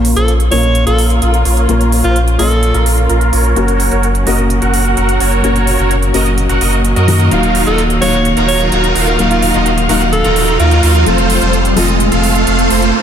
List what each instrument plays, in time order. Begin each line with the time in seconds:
Already playing: sub bass A#1, felt piano A#2 A#3 C#4 F4 A#4, string section A#3 C#4 F4, supersaw synth F4 A#4 C#5
0.05 open hi-hat
0.16 sub bass A#1, supersaw synth F4 A#4 C5, alto saxophone A4, closed hi-hat
0.28 closed hi-hat
0.40 closed hi-hat
0.51 sub bass A#1, felt piano A#2 A#3 C#4 F4 A#4, supersaw synth F4 A#4 D#5, alto saxophone C#5, open hi-hat
0.63 closed hi-hat
0.75 closed hi-hat
0.87 sub bass A#1, supersaw synth F4 A#4 F5, alto saxophone A4, closed hi-hat
0.98 open hi-hat
1.10 closed hi-hat
1.22 sub bass A#1, supersaw synth F4 A#4 F5, closed hi-hat
1.34 closed hi-hat
1.45 sub bass A#1, supersaw synth F4 A#4 C#5, open hi-hat
1.57 closed hi-hat
1.68 sub bass A#1, felt piano A#2 A#3 C#4 F4 A#4, supersaw synth F4 A#4 C#5, closed hi-hat
1.81 closed hi-hat
1.92 open hi-hat
2.04 sub bass A#1, supersaw synth F4 A#4 C5, alto saxophone F4, closed hi-hat
2.16 closed hi-hat
2.28 closed hi-hat
2.38 sub bass A#1, felt piano A#2 A#3 C#4 F4 C#5, supersaw synth F4 A#4 D#5, alto saxophone A4, open hi-hat
2.51 closed hi-hat
2.63 closed hi-hat
2.74 sub bass A#1, supersaw synth F4 A#4 F5, closed hi-hat
2.86 open hi-hat
2.98 closed hi-hat
3.09 sub bass A#1, supersaw synth F4 A#4 F5, closed hi-hat
3.21 closed hi-hat
3.33 sub bass A#1, supersaw synth F4 A#4 C#5, open hi-hat
3.45 closed hi-hat
3.55 sub bass F#1, string section F#3 A#3, felt piano A#3 C#4 F#4 A#4, supersaw synth F#4 A#4 C#5, closed hi-hat
3.68 closed hi-hat
3.80 open hi-hat
3.92 sub bass F#1, supersaw synth F#4 A#4 C#5, closed hi-hat
4.03 closed hi-hat
4.15 closed hi-hat
4.26 sub bass F#1, felt piano A#3 C#4 F#4 A#4, supersaw synth F#4 A#4 D#5, open hi-hat
4.38 closed hi-hat
4.50 closed hi-hat
4.62 sub bass F#1, supersaw synth F#4 A#4 F#5, closed hi-hat
4.74 open hi-hat
4.85 closed hi-hat
4.97 sub bass F#1, supersaw synth F#4 A#4 F#5, closed hi-hat
5.09 closed hi-hat
5.20 sub bass F#1, supersaw synth F#4 A#4 C#5, open hi-hat
5.32 closed hi-hat
5.43 sub bass F#1, felt piano A#3 C#4 F#4 A#4, supersaw synth F#4 A#4 C#5, closed hi-hat
5.56 closed hi-hat
5.67 open hi-hat
5.79 sub bass F#1, supersaw synth F#4 A#4 C#5, closed hi-hat
5.91 closed hi-hat
6.03 closed hi-hat
6.13 sub bass F#1, felt piano A#3 C#4 F#4 A#4, supersaw synth F#4 A#4 D#5, open hi-hat
6.26 closed hi-hat
6.38 closed hi-hat
6.49 sub bass F#1, supersaw synth F#4 A#4 F#5, closed hi-hat
6.61 sub bass F#1, supersaw synth F#4 A#4 D#5, open hi-hat
6.73 closed hi-hat
6.85 closed hi-hat
6.96 sub bass F#2, supersaw synth F#4 A#4 D#5, closed hi-hat
7.07 felt piano D#3 A#3 C#4 F#4 A#4, open hi-hat
7.20 closed hi-hat
7.30 sub bass D#1, string section D#3 F5, felt piano F#3 A#3 D#4 F5, supersaw synth D#4 F4 F#4 A#4 F5, closed hi-hat, riser
7.43 closed hi-hat
7.55 open hi-hat
7.67 sub bass D#1, supersaw synth D#4 F4 F#4 A#4 D#5, alto saxophone A4, closed hi-hat
7.78 closed hi-hat
7.90 closed hi-hat
8.00 sub bass D#1, felt piano F#3 A#3 D#4 F5, supersaw synth D#4 F4 F#4 A#4 F#5, alto saxophone C#5, open hi-hat
8.13 closed hi-hat
8.25 closed hi-hat
8.37 sub bass D#1, supersaw synth D#4 F4 F#4 A#4 A#5, closed hi-hat
8.48 alto saxophone C#5, open hi-hat
8.60 closed hi-hat
8.72 sub bass D#1, supersaw synth D#4 F4 F#4 A#4 A#5, closed hi-hat
8.84 closed hi-hat
8.96 sub bass D#1, supersaw synth D#4 F4 F#4 A#4 F5, open hi-hat
9.07 alto saxophone A#4, closed hi-hat
9.18 sub bass D#1, felt piano F#3 A#3 D#4 F5, supersaw synth D#4 F4 F#4 A#4 F5, alto saxophone A#4, closed hi-hat
9.31 alto saxophone F4, closed hi-hat
9.42 open hi-hat
9.54 sub bass D#1, supersaw synth D#4 F4 F#4 A#4 D#5, closed hi-hat
9.66 closed hi-hat
9.78 closed hi-hat
9.88 sub bass D#1, felt piano F#3 A#3 D#4 F5, supersaw synth D#4 F4 F#4 A#4 F#5, open hi-hat
10.01 closed hi-hat
10.13 alto saxophone A4, closed hi-hat
10.24 sub bass D#1, supersaw synth D#4 F4 F#4 A#4 A#5, closed hi-hat
10.36 open hi-hat
10.48 closed hi-hat
10.60 sub bass D#2, supersaw synth D#4 F4 F#4 A#4 A#5, alto saxophone F4, closed hi-hat
10.71 closed hi-hat
10.83 sub bass D#2, supersaw synth D#4 F4 F#4 A#4 F5, open hi-hat
10.95 closed hi-hat
11.05 sub bass F1, felt piano F3 A3 C4 F4, string section A3 C4, supersaw synth F4 A4 C5, closed hi-hat
11.18 closed hi-hat
11.30 open hi-hat
11.41 sub bass F1, supersaw synth F4 A4 C5, closed hi-hat
11.53 closed hi-hat
11.65 closed hi-hat
11.75 sub bass F1, felt piano F3 A3 C4 F4, supersaw synth F4 A4 D#5, open hi-hat
11.88 closed hi-hat
12.00 closed hi-hat
12.12 sub bass F1, supersaw synth F4 A4 F5, closed hi-hat
12.23 open hi-hat
12.35 closed hi-hat
12.47 sub bass F1, supersaw synth F4 A4 F5, closed hi-hat
12.59 closed hi-hat
12.70 sub bass F1, supersaw synth F4 A4 C5, open hi-hat
12.82 closed hi-hat
12.94 string section D#4